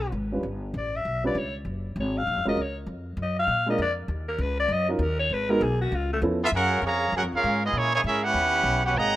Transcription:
Already playing: upright bass B1, alto saxophone B4
0.12 upright bass G#1
0.32 upright piano G3 C#4 D4 F4 B4
0.43 upright bass G1
0.74 upright bass A1
0.78 alto saxophone D5
0.96 alto saxophone E5
1.05 upright bass B1
1.24 upright piano G3 C#4 D4 F4 B4, alto saxophone D5
1.35 upright bass C#2, alto saxophone C#5
1.65 upright bass F#1
1.96 upright bass G#1
2.00 alto saxophone C#5
2.18 alto saxophone F5
2.27 upright bass A#1
2.37 upright bass F#1
2.45 upright bass F1, upright piano G#3 C#4 F4 F#4 A#4, alto saxophone D#5
2.57 upright bass C#2
2.62 alto saxophone C#5
2.86 upright bass F2
3.17 upright bass F#2
3.23 alto saxophone D#5
3.39 alto saxophone F5
3.47 upright bass A#2
3.66 upright piano G#3 A#3 D4 F4 A#4, alto saxophone D#5
3.78 upright bass F2
3.82 alto saxophone D5
4.08 upright bass D#2
4.29 alto saxophone A#4
4.38 upright bass C#2, alto saxophone B4
4.60 alto saxophone D5
4.68 upright bass F#2
4.73 alto saxophone D#5
4.88 upright piano F#3 C#4 D#4 F4 A#4, alto saxophone F#4
4.99 upright bass D#2, alto saxophone A#4
5.20 alto saxophone C#5
5.30 upright bass G#1, alto saxophone B4
5.49 upright piano G#3 B3 D#4 F#4 A#4, alto saxophone A#4
5.61 upright bass B1, alto saxophone G#4
5.81 alto saxophone F#4
5.92 upright bass C#2, alto saxophone F4
6.13 alto saxophone A3
6.22 upright bass E2, upright piano F3 B3 C#4 E4 A4
6.43 trombone section A3 B3 E4, trumpet section B3 F4 A4 E5
6.52 upright bass F#2, trombone section A#3 C#4 F#4, trumpet section C#4 G#4 A#4 F#5
6.82 upright bass F2, trombone section C#3 F3 A#3, trumpet section G#4 C#5
6.86 trumpet section F5 A#5
7.12 upright bass F#2, trombone section A#3 C#4 F#4, trumpet section C#4 G#4 F#5
7.16 trumpet section A#4
7.22 upright bass F2
7.33 upright bass C#2, trombone section A#3 C#4 F4, trumpet section C#4 G#4 A#4 F5
7.44 upright bass G#2
7.65 trumpet section B3 F4 G#4 D#5, trombone section D#4
7.73 upright bass A#2, trombone section E3 G#3 C#4
7.77 trumpet section A#3 E4 G#4 C#5
7.94 trombone section E3 G#3 C#4, trumpet section A#3 E4 G#4 C#5
8.04 upright bass G#2, trombone section G#3 C#4 E4, trumpet section C#4 G#4 A#4 E5
8.23 trombone section B3 C#4 E4, trumpet section C#4 G4 B4 F#5
8.34 upright bass D#2
8.63 upright bass B1
8.83 trombone section B3 C#4 F#4, trumpet section C#4 G4 B4 F#5
8.95 upright bass G#1, trombone section D#3 F#3 A#3, trumpet section G#4 D#5 F#5 A#5

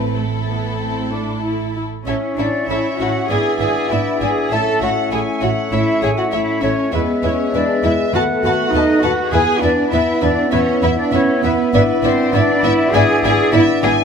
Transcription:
Already playing: double bass section A1, cello section A2, viola section A3 C4, violin section E4 A4 B4
0.15 viola section A3, violin section E4 A4
0.48 viola section B3
0.80 viola section C4
1.12 viola section D4
1.44 viola section E4
1.76 viola section E4
2.06 double bass section A1, french horn section C#4 E4, bassoon C#4, cello section C#4, viola section C#4 E4, violin section A4 C#5 E5, clarinet C#5, flute C#5, oboe E5
2.37 double bass section A1, viola section C#4 E4, cello section D4, violin section A4 D5 E5, flute D5
2.67 double bass section A1, french horn section C#4 E4, viola section C#4 E4, cello section E4, violin section A4 E5, flute E5
2.98 double bass section A1, viola section C#4 E4, cello section F#4, violin section A4 E5 F#5, flute F#5
3.29 double bass section G#1, bassoon B3, viola section B3 E4, french horn section D4 E4, cello section G#4, clarinet D5, violin section D5 E5 G#5, flute G#5
3.60 double bass section G#1, viola section B3 E4, cello section G#4, violin section D5 E5 G#5, flute G#5
3.89 double bass section G#1, viola section B3 E4, french horn section D4 E4, cello section E4, violin section D5 E5, flute E5
4.21 double bass section G#1, viola section B3 E4, cello section G#4, violin section D5 E5 G#5, flute G#5
4.50 double bass section A1, bassoon A3, viola section A3 E4, french horn section C#4 E4, cello section A4, clarinet C#5, violin section C#5 E5 A5, flute A5
4.81 double bass section A1, viola section A3 E4, cello section F#4, violin section C#5 E5 F#5, flute F#5
5.11 double bass section A1, viola section A3 E4, cello section G#4, violin section C#5 E5 G#5, flute G#5
5.41 double bass section A1, viola section A3 E4, cello section F#4, violin section C#5 E5 F#5, flute F#5
5.72 double bass section A1, viola section A3 E4, french horn section C#4 E4, cello section E4, violin section C#5 E5, flute E5
6.02 double bass section A1, viola section A3 E4, cello section G#4, violin section C#5 E5 G#5, flute G#5
6.18 cello section F#4, violin section F#5, flute F#5
6.32 double bass section A1, viola section A3 E4, french horn section C#4 E4, cello section E4, violin section C#5 E5, flute E5
6.62 double bass section A1, viola section A3 E4, cello section C#4, violin section C#5 E5, flute C#5
6.92 double bass section E2, bassoon G#3, viola section G#3 E4, french horn section B3 G#4, cello section B3, violin section B4 E5, flute B4, clarinet B4, oboe E5
7.23 double bass section E2, viola section G#3 E4, cello section C#4, violin section B4 C#5 E5, flute C#5
7.53 double bass section E2, viola section G#3 E4, cello section D4, violin section B4 D5 E5, flute D5
7.83 double bass section E2, viola section G#3 E4, cello section E4, violin section B4 E5, flute E5
8.13 double bass section D#2, bassoon A3, french horn section B3 A4, viola section B3 F#4, cello section F#4, violin section B4 F#5 A5, oboe F#5, flute F#5
8.44 double bass section D#2, viola section B3 F#4, cello section F#4, violin section B4 F#5 A5, flute F#5
8.73 double bass section D#2, french horn section B3 A4, viola section B3 F#4, cello section D#4, violin section B4 D#5 A5, flute D#5
9.03 double bass section D#2, viola section B3 F#4, cello section F#4, violin section B4 F#5 A5, flute F#5
9.31 double bass section E2, french horn section B3 E4, bassoon B3, viola section B3 E4, cello section G#4, violin section B4 E5 G#5, flute G#5
9.62 double bass section E2, viola section B3 E4, cello section D4, violin section B4 D5 E5, flute D5
9.91 double bass section E2, french horn section B3 E4, viola section B3 E4, cello section E4, violin section B4 E5, flute E5, oboe E5
10.22 double bass section E2, viola section B3 E4, cello section D4, violin section B4 D5 E5, flute D5
10.52 double bass section E2, viola section B3 E4, cello section C#4, violin section B4 C#5 E5, flute C#5
10.82 double bass section E2, viola section B3 E4, cello section E4, violin section B4 E5, flute E5
10.98 cello section D4, flute D5, violin section D5
11.12 double bass section E2, viola section B3 E4, cello section C#4, violin section B4 C#5 E5, flute C#5
11.43 double bass section E2, cello section B3, viola section B3 E4, violin section B4 E5, flute B4
11.73 double bass section G#1, cello section B3, viola section B3 E4, french horn section D4 E4, violin section B4 D5 E5, flute B4, clarinet D5
12.03 double bass section G#1, viola section B3 E4, cello section C4, flute C5, violin section C5 D5 E5
12.33 double bass section G#1, viola section B3 E4, cello section D4, french horn section D4 E4, flute D5, violin section D5 E5
12.63 double bass section G#1, viola section B3 E4, cello section E4, violin section D5 E5, flute E5
12.93 double bass section G#1, viola section B3 E4, french horn section D4 E4, cello section G#4, violin section D5 E5 G#5, flute G#5
13.23 double bass section G#1, viola section B3 E4, cello section G#4, violin section D5 E5 G#5, flute G#5
13.52 double bass section G#1, viola section B3 E4, french horn section D4 E4, cello section E4, violin section D5 E5, flute E5
13.83 double bass section G#1, viola section B3 E4, cello section G#4, violin section D5 E5 G#5, flute G#5

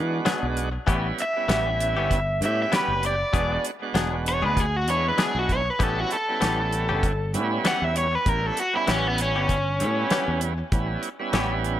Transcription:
Already playing: fingered electric bass E3, tonewheel organ G#3 B3 D4 F#4
0.25 clean electric guitar F#3 B3 D4 G#4, snare, closed hi-hat
0.43 fingered electric bass B1
0.57 closed hi-hat
0.87 fingered electric bass A1, clean electric guitar E3 B3 C#4 G4, tonewheel organ G3 B3 C#4 E4, kick, closed hi-hat
1.18 overdriven electric guitar E5, closed hi-hat
1.36 tonewheel organ G3 B3 C#4 E4
1.48 fingered electric bass A1, clean electric guitar E3 B3 C#4 G4, snare, closed hi-hat
1.80 closed hi-hat
1.97 fingered electric bass G1, clean electric guitar B3 C#4 G4
2.11 kick, closed hi-hat
2.41 fingered electric bass A2, tonewheel organ G3 B3 C#4 G4, closed hi-hat
2.45 overdriven electric guitar E5
2.62 overdriven electric guitar E5
2.72 clean electric guitar E3 B3 C#4 G4, overdriven electric guitar B4, snare, closed hi-hat
2.88 fingered electric bass F#1
3.03 overdriven electric guitar D5, closed hi-hat
3.33 fingered electric bass E1, clean electric guitar F#3 B3 D4 G#4, tonewheel organ G#3 B3 D4 F#4, kick, closed hi-hat
3.64 closed hi-hat
3.82 tonewheel organ G#3 B3 D4 F#4
3.94 fingered electric bass E1, clean electric guitar F#3 B3 D4 G#4, snare, closed hi-hat
4.26 overdriven electric guitar C#5, closed hi-hat
4.42 fingered electric bass D2, clean electric guitar B3 D4 G#4, overdriven electric guitar B4
4.57 overdriven electric guitar G#4, kick, closed hi-hat
4.76 overdriven electric guitar F#4
4.87 fingered electric bass E2, tonewheel organ G#3 B3 D4 E4, overdriven electric guitar C#5, closed hi-hat
5.08 overdriven electric guitar B4
5.18 clean electric guitar F#3 B3 D4 G#4, snare, closed hi-hat
5.23 overdriven electric guitar G#4
5.35 fingered electric bass B1
5.39 overdriven electric guitar F#4
5.49 overdriven electric guitar C#5, kick, closed hi-hat
5.70 overdriven electric guitar B4
5.79 fingered electric bass A1, clean electric guitar E3 B3 C#4 G4, tonewheel organ G3 B3 C#4 E4, overdriven electric guitar A4, kick, closed hi-hat
6.00 overdriven electric guitar F#4
6.11 overdriven electric guitar A4, closed hi-hat
6.28 tonewheel organ G3 B3 C#4 E4
6.40 fingered electric bass A1, clean electric guitar E3 B3 C#4 G4, snare, closed hi-hat
6.72 closed hi-hat
6.89 fingered electric bass G1, clean electric guitar B3 C#4 G4
7.03 kick, closed hi-hat
7.34 fingered electric bass A2, tonewheel organ G3 B3 C#4 E4, closed hi-hat
7.65 clean electric guitar E3 B3 C#4 G4, overdriven electric guitar F#5, snare, closed hi-hat
7.82 fingered electric bass E2, overdriven electric guitar E5
7.96 overdriven electric guitar C#5, closed hi-hat
8.15 overdriven electric guitar B4
8.25 fingered electric bass A1, tonewheel organ G3 B3 C#4 E4, overdriven electric guitar A#4, kick, closed hi-hat
8.46 overdriven electric guitar A4
8.57 overdriven electric guitar F#4, closed hi-hat
8.73 tonewheel organ G3 B3 C#4 E4, overdriven electric guitar E4
8.87 fingered electric bass A1, clean electric guitar E3 B3 C#4 G4, overdriven electric guitar C#4, snare, closed hi-hat
9.08 overdriven electric guitar B3
9.18 overdriven electric guitar C#4, closed hi-hat
9.35 fingered electric bass G1, clean electric guitar B3 C#4 G4
9.49 kick, closed hi-hat
9.79 fingered electric bass A2, tonewheel organ G3 B3 C#4 E4, closed hi-hat
10.10 clean electric guitar E3 B3 C#4 G4, snare, closed hi-hat
10.28 fingered electric bass E2
10.41 closed hi-hat
10.72 fingered electric bass A1, tonewheel organ G3 B3 C#4 E4, kick, closed hi-hat
11.03 closed hi-hat
11.19 tonewheel organ G3 B3 C#4 E4
11.33 fingered electric bass A1, clean electric guitar E3 B3 C#4 G4, snare, closed hi-hat
11.64 closed hi-hat

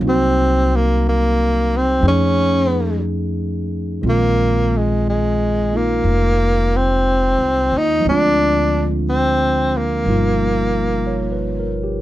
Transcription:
Already playing: tine electric piano F#3
0.00 upright bass C2, tine electric piano A#3 C4
0.05 tenor saxophone C4, tine electric piano D#4 F#4
0.76 tenor saxophone A#3
1.09 tenor saxophone A#3
1.77 tenor saxophone C4
2.01 upright bass F2, tine electric piano F3 A3 C#4 D#4
2.05 tenor saxophone C#4, tine electric piano G#4
4.02 upright bass A#1, tine electric piano D#3 G#3 C4
4.06 tenor saxophone A#3, tine electric piano F4
4.77 tenor saxophone G#3
5.09 tenor saxophone G#3
5.72 tine electric piano A#3 D#4 F4
5.76 tenor saxophone A#3
6.04 upright bass F1
6.77 tenor saxophone C4
7.38 upright bass C2
7.72 upright bass D#2
7.78 tenor saxophone D#4
8.00 tine electric piano F3 G#3
8.05 upright bass D2, tine electric piano C4 D4, tenor saxophone D4
8.11 tine electric piano F4
9.09 tenor saxophone C4
9.77 tenor saxophone A#3
10.05 upright bass G1, tine electric piano B2 F3 G3 D#4
10.09 tine electric piano F4
11.07 tine electric piano C#5
11.32 tine electric piano B4
11.60 tine electric piano A#4
11.84 tine electric piano G4

